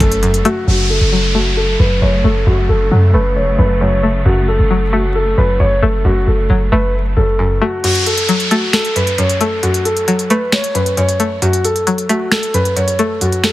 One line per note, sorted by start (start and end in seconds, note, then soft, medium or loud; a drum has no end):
0.00 0.43 F#1 loud
0.00 0.22 F#2 medium
0.00 0.64 C#3 medium
0.00 0.45 F#3 medium
0.00 0.64 F#3 medium
0.00 0.44 A3 loud
0.00 0.64 A3 medium
0.00 0.42 A4 medium
0.00 kick medium
0.00 closed hi-hat medium
0.12 closed hi-hat medium
0.23 0.66 F#2 medium
0.23 closed hi-hat medium
0.34 closed hi-hat medium
0.45 0.68 A3 medium
0.45 0.66 F#4 medium
0.45 closed hi-hat medium
0.68 1.00 F#1 loud
0.68 1.78 F#2 medium
0.68 7.80 C#3 medium
0.68 7.80 F#3 medium
0.68 7.80 A3 medium
0.68 0.88 F#4 medium
0.68 downlifter medium
0.90 1.32 A4 medium
1.01 1.76 F#1 loud
1.12 2.24 F#3 medium
1.35 2.23 A3 loud
1.35 1.56 F#4 medium
1.57 1.78 A4 medium
1.79 2.01 F#1 loud
1.79 2.01 F#2 medium
1.79 2.00 B4 medium
2.02 2.23 F#1 loud
2.02 2.45 F#2 medium
2.02 2.23 C#5 medium
2.24 2.46 F#1 loud
2.24 3.13 A3 medium
2.24 2.45 A4 medium
2.47 2.68 F#1 loud
2.47 3.57 F#2 medium
2.47 2.67 F#4 medium
2.69 2.91 F#1 loud
2.69 3.11 A4 medium
2.91 3.13 F#2 loud
2.91 4.03 F#3 medium
3.14 3.38 F#1 loud
3.14 4.02 A3 medium
3.14 3.35 B4 medium
3.36 3.49 E1 loud
3.36 3.57 C#5 medium
3.47 3.58 F#1 loud
3.58 4.23 F#1 loud
3.58 3.80 F#2 medium
3.58 3.79 B4 medium
3.81 4.24 F#2 medium
3.81 4.23 C#5 medium
4.03 4.26 A3 medium
4.26 4.58 F#1 loud
4.26 5.37 F#2 medium
4.26 4.47 F#4 medium
4.48 4.90 A4 medium
4.59 5.35 F#1 loud
4.71 5.82 F#3 medium
4.93 5.81 A3 medium
4.93 5.14 F#4 medium
5.15 5.36 A4 medium
5.38 5.59 F#1 loud
5.38 5.59 F#2 medium
5.38 5.59 B4 medium
5.60 5.82 F#1 loud
5.60 6.04 F#2 medium
5.60 5.81 C#5 medium
5.82 6.04 F#1 loud
5.82 6.71 A3 medium
5.82 6.03 A4 medium
6.05 6.26 F#1 loud
6.05 7.15 F#2 medium
6.05 6.26 F#4 medium
6.27 6.49 F#1 loud
6.27 6.69 A4 medium
6.50 6.71 F#1 loud
6.50 7.62 F#3 medium
6.72 7.15 F#1 loud
6.72 7.60 A3 loud
6.72 6.93 B4 medium
7.17 7.60 F#1 loud
7.17 7.38 F#2 medium
7.17 7.59 A4 medium
7.39 7.83 F#2 medium
7.61 7.84 A3 medium
7.61 7.82 F#4 medium
7.84 8.95 F#2 medium
7.84 8.05 F#4 medium
7.84 closed hi-hat medium
7.84 crash medium
7.84 downlifter medium
7.95 closed hi-hat medium
8.06 8.48 A4 medium
8.06 closed hi-hat medium
8.18 closed hi-hat medium
8.29 9.41 F#3 medium
8.29 closed hi-hat medium
8.40 closed hi-hat soft
8.51 9.39 A3 loud
8.51 8.72 F#4 medium
8.51 closed hi-hat medium
8.73 8.94 A4 loud
8.73 finger snap medium
8.73 snare loud
8.73 closed hi-hat medium
8.85 closed hi-hat medium
8.96 9.17 F#2 medium
8.96 9.17 B4 medium
8.96 closed hi-hat medium
9.07 closed hi-hat medium
9.18 9.62 F#2 medium
9.18 9.39 C#5 medium
9.18 closed hi-hat medium
9.29 closed hi-hat medium
9.41 10.29 A3 medium
9.41 9.62 A4 medium
9.41 closed hi-hat medium
9.63 10.74 F#2 medium
9.63 9.84 F#4 medium
9.63 closed hi-hat medium
9.74 closed hi-hat medium
9.85 10.27 A4 medium
9.85 closed hi-hat medium
9.97 closed hi-hat medium
10.08 11.20 F#3 medium
10.08 closed hi-hat medium
10.19 closed hi-hat soft
10.30 11.19 A3 loud
10.30 10.51 B4 medium
10.30 closed hi-hat medium
10.52 10.73 C#5 medium
10.52 finger snap medium
10.52 snare loud
10.52 closed hi-hat medium
10.64 closed hi-hat medium
10.75 10.96 F#2 medium
10.75 10.96 B4 medium
10.75 closed hi-hat medium
10.86 closed hi-hat medium
10.97 11.41 F#2 medium
10.97 11.39 C#5 medium
10.97 closed hi-hat medium
11.09 closed hi-hat medium
11.20 11.42 A3 medium
11.20 closed hi-hat medium
11.42 12.53 F#2 medium
11.42 11.63 F#4 medium
11.42 closed hi-hat medium
11.53 closed hi-hat medium
11.65 12.07 A4 medium
11.65 closed hi-hat medium
11.76 closed hi-hat medium
11.87 12.99 F#3 medium
11.87 closed hi-hat medium
11.98 closed hi-hat soft
12.09 12.98 A3 loud
12.09 12.30 F#4 medium
12.09 closed hi-hat medium
12.31 12.53 A4 medium
12.31 finger snap medium
12.31 snare loud
12.31 closed hi-hat medium
12.43 closed hi-hat medium
12.54 12.75 F#2 medium
12.54 12.75 B4 medium
12.54 closed hi-hat medium
12.65 closed hi-hat medium
12.76 13.20 F#2 medium
12.76 12.97 C#5 medium
12.76 closed hi-hat medium
12.88 closed hi-hat medium
12.99 13.52 A3 medium
12.99 13.20 A4 medium
12.99 closed hi-hat medium
13.21 13.52 F#2 medium
13.21 13.42 F#4 medium
13.21 closed hi-hat medium
13.32 closed hi-hat medium
13.44 13.52 A4 medium
13.44 finger snap medium
13.44 snare loud
13.44 closed hi-hat medium